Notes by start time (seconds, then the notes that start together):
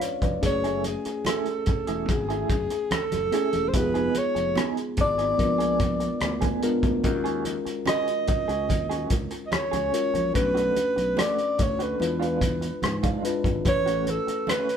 Already playing: G#3 C#4 D4 F4 B4 D5 F5
0.00 C#5, muted clean electric guitar stroke, closed hi-hat
0.22 F1 B4 D5, muted clean electric guitar stroke, kick, closed hi-hat, high conga
0.41 F#1 G#3 C#4 E4 F#4 G#4, muted clean electric guitar stroke, kick, closed hi-hat, muted conga
0.45 A3 C#5
0.64 A3 E4 G#4, closed hi-hat
0.84 G#4, muted clean electric guitar stroke, closed hi-hat, muted conga
1.05 muted clean electric guitar stroke, muted fingered electric bass stroke, closed hi-hat
1.25 A3 E4 G#4 A4, cross-stick, closed hi-hat, high conga
1.46 closed hi-hat
1.66 muted fingered electric bass stroke, muted clean electric guitar stroke, kick, closed hi-hat, muted conga
1.87 E1 A3 E4 G#4, closed hi-hat
2.08 G#1 G#4, muted clean electric guitar stroke, kick, closed hi-hat, muted conga, low conga
2.29 A3 E4 G#4, closed hi-hat
2.50 F#1, muted clean electric guitar stroke, kick, closed hi-hat
2.70 muted clean electric guitar stroke, closed hi-hat
2.91 A4, muted clean electric guitar stroke, muted fingered electric bass stroke, cross-stick, closed hi-hat, high conga
3.12 F#1, cross-stick, closed hi-hat, high conga
3.31 A3 C#4 E4 F#4 G#4, closed hi-hat
3.53 E1, muted clean electric guitar stroke, closed hi-hat, high conga
3.68 C5
3.73 F1 G#3 B3 D#4 F4 G4 B4, muted clean electric guitar stroke, kick, closed hi-hat, muted conga
3.80 G#4
3.94 B3 D#4 G#4, closed hi-hat
4.15 C#5, muted clean electric guitar stroke, closed hi-hat, muted conga
4.35 F1, muted clean electric guitar stroke, closed hi-hat
4.55 B3 D#4 G#4, cross-stick, closed hi-hat, high conga
4.77 closed hi-hat
4.97 G#1 D5, muted clean electric guitar stroke, kick, closed hi-hat, muted conga
5.18 B3 D#4 G#4, closed hi-hat
5.38 A#1 G#3 B3 D4 F4 A#4, muted clean electric guitar stroke, kick, closed hi-hat, muted conga
5.58 B3 D4 G#4, closed hi-hat
5.79 muted clean electric guitar stroke, kick, closed hi-hat, low conga
6.00 muted clean electric guitar stroke, closed hi-hat
6.21 D2, muted clean electric guitar stroke, cross-stick, closed hi-hat, high conga
6.41 B3 D4 G#4, kick, closed hi-hat, high conga
6.62 G#3 B3 D4 F4 A#4, muted clean electric guitar stroke, closed hi-hat
6.83 D2, muted clean electric guitar stroke, kick, closed hi-hat, high conga
7.03 D#2 G#3 C#4 F4 F#4 A#4, muted clean electric guitar stroke, kick, closed hi-hat, muted conga
7.24 C#4 F#4 G#4, closed hi-hat
7.45 muted clean electric guitar stroke, closed hi-hat, muted conga
7.65 muted clean electric guitar stroke, muted fingered electric bass stroke, closed hi-hat
7.86 C#4 F#4 G#4 D#5, cross-stick, closed hi-hat, high conga
8.08 closed hi-hat
8.27 D#5, muted clean electric guitar stroke, muted fingered electric bass stroke, kick, closed hi-hat, muted conga
8.48 C#2 C#4 F#4 G#4, closed hi-hat
8.69 D#2, muted clean electric guitar stroke, kick, closed hi-hat, muted conga, low conga
8.89 C#4 F#4 G#4, closed hi-hat
9.10 C#2, muted clean electric guitar stroke, kick, closed hi-hat
9.31 muted clean electric guitar stroke, closed hi-hat
9.47 D#5
9.51 C#5, muted clean electric guitar stroke, muted fingered electric bass stroke, cross-stick, closed hi-hat, high conga
9.71 C#2 C#4 F#4 G#4, cross-stick, closed hi-hat, high conga
9.92 G#3 C#4 F4 F#4 A#4, muted clean electric guitar stroke, closed hi-hat
10.14 A#1, muted clean electric guitar stroke, closed hi-hat, high conga
10.33 B1 A3 C#4 D4 F#4 B4, muted clean electric guitar stroke, kick, closed hi-hat, muted conga
10.55 A3 D4 F#4, closed hi-hat
10.76 muted clean electric guitar stroke, closed hi-hat, muted conga
10.96 B1, muted clean electric guitar stroke, closed hi-hat
11.17 A3 D4 F#4 D5, cross-stick, closed hi-hat, high conga
11.39 closed hi-hat
11.58 D2 C#5, muted clean electric guitar stroke, kick, closed hi-hat, muted conga
11.79 A3 D4 F#4 B4, closed hi-hat
12.00 E2 G#3 D4 E4 F4 B4, muted clean electric guitar stroke, closed hi-hat, muted conga
12.20 G#3 D4 F4, closed hi-hat
12.41 muted clean electric guitar stroke, kick, closed hi-hat, low conga
12.61 muted clean electric guitar stroke, closed hi-hat
12.82 G#2, muted clean electric guitar stroke, cross-stick, closed hi-hat, high conga
13.03 G#3 D4 F4, kick, cross-stick, closed hi-hat, high conga
13.23 G#3 D4 E4 F4 B4, muted clean electric guitar stroke, closed hi-hat
13.44 G#1, muted clean electric guitar stroke, kick, closed hi-hat, high conga
13.65 A1 A3 C#4 E4 F#4 B4 C#5, muted clean electric guitar stroke, kick, closed hi-hat, muted conga
13.86 A3 C#4 F#4, closed hi-hat
14.07 A4, muted clean electric guitar stroke, closed hi-hat, muted conga
14.27 muted clean electric guitar stroke, muted fingered electric bass stroke, closed hi-hat
14.47 A3 C#4 F#4, cross-stick, closed hi-hat, high conga
14.51 B4
14.69 closed hi-hat